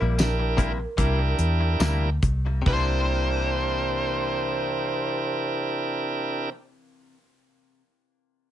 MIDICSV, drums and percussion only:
0, 0, Header, 1, 2, 480
1, 0, Start_track
1, 0, Tempo, 787402
1, 595, Tempo, 841515
1, 1554, Time_signature, 4, 2, 24, 8
1, 1555, Tempo, 881057
1, 4743, End_track
2, 0, Start_track
2, 0, Title_t, "Drums"
2, 113, Note_on_c, 9, 42, 76
2, 113, Note_on_c, 9, 54, 102
2, 121, Note_on_c, 9, 38, 108
2, 174, Note_off_c, 9, 42, 0
2, 174, Note_off_c, 9, 54, 0
2, 182, Note_off_c, 9, 38, 0
2, 354, Note_on_c, 9, 36, 74
2, 357, Note_on_c, 9, 42, 62
2, 415, Note_off_c, 9, 36, 0
2, 418, Note_off_c, 9, 42, 0
2, 597, Note_on_c, 9, 36, 83
2, 598, Note_on_c, 9, 42, 73
2, 654, Note_off_c, 9, 36, 0
2, 655, Note_off_c, 9, 42, 0
2, 829, Note_on_c, 9, 42, 59
2, 886, Note_off_c, 9, 42, 0
2, 1066, Note_on_c, 9, 42, 76
2, 1066, Note_on_c, 9, 54, 102
2, 1073, Note_on_c, 9, 38, 97
2, 1123, Note_off_c, 9, 42, 0
2, 1123, Note_off_c, 9, 54, 0
2, 1130, Note_off_c, 9, 38, 0
2, 1308, Note_on_c, 9, 36, 83
2, 1308, Note_on_c, 9, 42, 55
2, 1365, Note_off_c, 9, 36, 0
2, 1365, Note_off_c, 9, 42, 0
2, 1556, Note_on_c, 9, 43, 84
2, 1556, Note_on_c, 9, 52, 77
2, 1557, Note_on_c, 9, 36, 94
2, 1611, Note_off_c, 9, 36, 0
2, 1611, Note_off_c, 9, 43, 0
2, 1611, Note_off_c, 9, 52, 0
2, 4743, End_track
0, 0, End_of_file